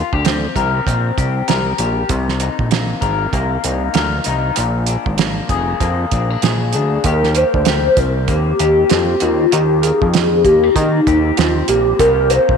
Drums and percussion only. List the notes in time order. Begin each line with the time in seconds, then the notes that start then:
0.13 kick
0.25 snare, closed hi-hat
0.56 kick, closed hi-hat
0.87 kick, closed hi-hat
1.18 kick, closed hi-hat
1.48 snare, closed hi-hat
1.78 closed hi-hat
2.09 kick, closed hi-hat
2.29 snare
2.40 closed hi-hat
2.59 kick
2.71 snare, closed hi-hat
3.02 kick, closed hi-hat
3.33 kick, closed hi-hat
3.64 closed hi-hat
3.94 snare, closed hi-hat
4.24 closed hi-hat
4.56 closed hi-hat
4.87 closed hi-hat
5.06 kick
5.18 snare, closed hi-hat
5.49 kick, closed hi-hat
5.80 kick, closed hi-hat
6.11 kick, closed hi-hat
6.42 snare, closed hi-hat
6.73 closed hi-hat
7.04 kick, closed hi-hat
7.24 snare
7.35 closed hi-hat
7.54 kick
7.65 snare, closed hi-hat
7.97 kick, closed hi-hat
8.28 kick, closed hi-hat
8.60 closed hi-hat
8.90 snare, closed hi-hat
9.20 closed hi-hat
9.52 closed hi-hat
9.83 closed hi-hat
10.02 kick
10.14 snare, closed hi-hat
10.45 kick, closed hi-hat
10.76 kick, closed hi-hat
11.07 kick, closed hi-hat
11.37 snare, closed hi-hat
11.68 closed hi-hat
11.99 kick, closed hi-hat
12.30 closed hi-hat
12.49 kick